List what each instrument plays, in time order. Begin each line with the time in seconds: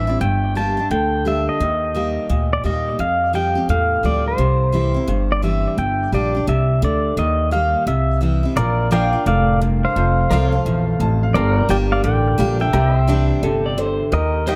Already playing: upright bass A1, steel-string acoustic guitar G2, pedal steel guitar E5
0.07 steel-string acoustic guitar C4 E4
0.21 upright bass G1, steel-string acoustic guitar G2, pedal steel guitar G5
0.55 steel-string acoustic guitar G3 A#3 D4 G4, pedal steel guitar A5
0.77 steel-string acoustic guitar D4 G4
0.90 upright bass D2, steel-string acoustic guitar D3, pedal steel guitar G5
1.25 steel-string acoustic guitar G3 A#3 D4 G4, pedal steel guitar E5
1.49 pedal steel guitar D#5
1.60 upright bass D#2, steel-string acoustic guitar D#3
1.95 steel-string acoustic guitar G3 A#3 D#4 G4
2.29 upright bass D2, steel-string acoustic guitar A#2
2.53 pedal steel guitar D5
2.64 upright bass D#2, steel-string acoustic guitar G3 A#3 D#4 G4, pedal steel guitar D#5
2.99 steel-string acoustic guitar F2, upright bass F2, pedal steel guitar F5
3.33 steel-string acoustic guitar F3 G3 C4 G4, pedal steel guitar G5
3.55 steel-string acoustic guitar C4 G4
3.69 upright bass E2, steel-string acoustic guitar A2, pedal steel guitar F5
4.03 upright bass D2, steel-string acoustic guitar F3 G3 C4 G4, pedal steel guitar D5
4.28 pedal steel guitar C5
4.38 upright bass C2, steel-string acoustic guitar C3
4.72 steel-string acoustic guitar E3 G3 C4 E4
4.94 steel-string acoustic guitar C4 E4
5.08 upright bass G1, steel-string acoustic guitar G2
5.32 pedal steel guitar D5
5.42 steel-string acoustic guitar E3 G3 C4 E4, pedal steel guitar E5
5.77 upright bass G1, steel-string acoustic guitar G2, pedal steel guitar G5
6.12 upright bass A#1, steel-string acoustic guitar G3 A#3 D4 G4, pedal steel guitar D5
6.35 steel-string acoustic guitar D4 G4
6.47 upright bass C2, steel-string acoustic guitar C3, pedal steel guitar E5
6.82 upright bass D2, steel-string acoustic guitar D3, pedal steel guitar D5
7.17 upright bass D#2, steel-string acoustic guitar D#3, pedal steel guitar D#5
7.51 steel-string acoustic guitar G3 A#3 D#4 G4, pedal steel guitar F5
7.87 upright bass C2, steel-string acoustic guitar C3, pedal steel guitar E5
8.21 steel-string acoustic guitar E3 G3 C4 E4
8.43 steel-string acoustic guitar C4 E4
8.56 upright bass A#1, steel-string acoustic guitar A#2, grand piano F4 A#4 D5, pedal steel guitar A#4 D5
8.91 steel-string acoustic guitar F3 A#3 D4 F4, pedal steel guitar A#4 D5 F5 G5
9.13 steel-string acoustic guitar D4 F4
9.26 upright bass F1, steel-string acoustic guitar A2, pedal steel guitar D5 F5
9.62 steel-string acoustic guitar G2
9.85 pedal steel guitar C5 F5
9.95 upright bass F1, steel-string acoustic guitar F2, grand piano F4 A4 C5
10.30 upright bass C2, steel-string acoustic guitar F3 A3 C4 F4, pedal steel guitar A#4 D5 F5
10.51 steel-string acoustic guitar C4 F4, pedal steel guitar A4
10.57 pedal steel guitar C5
10.65 upright bass A#1, steel-string acoustic guitar E2
11.00 upright bass A1, steel-string acoustic guitar F2, grand piano A5
11.23 grand piano F5
11.34 upright bass G1, steel-string acoustic guitar G2, grand piano G4 A#4 D5, pedal steel guitar A4 A#4 C5 D5 F5
11.56 pedal steel guitar A#4
11.61 pedal steel guitar D5 G5
11.69 upright bass G1, steel-string acoustic guitar G3 A#3 D4 G4, pedal steel guitar D5 G5
11.92 pedal steel guitar D5 F5
12.04 upright bass A1, steel-string acoustic guitar D3, pedal steel guitar D5 G5
12.38 upright bass A#1, steel-string acoustic guitar G3 A#3 D4 G4
12.60 steel-string acoustic guitar D4 G4, pedal steel guitar E5 G5
12.73 upright bass C2, steel-string acoustic guitar C3, grand piano G4 C5 E5, pedal steel guitar A#4 D5 G5
12.98 pedal steel guitar C5 E5
13.07 steel-string acoustic guitar E3 G3 C4 E4, clean electric guitar D4
13.43 upright bass G1, steel-string acoustic guitar C3, clean electric guitar A4
13.66 clean electric guitar D5
13.78 steel-string acoustic guitar D3, clean electric guitar C5
14.12 upright bass D#2, steel-string acoustic guitar D#3, grand piano G4 A#4 D#5, pedal steel guitar A#4 D#5
14.47 steel-string acoustic guitar G3 A#3 D#4 G4, pedal steel guitar C5 D#5 E5 G5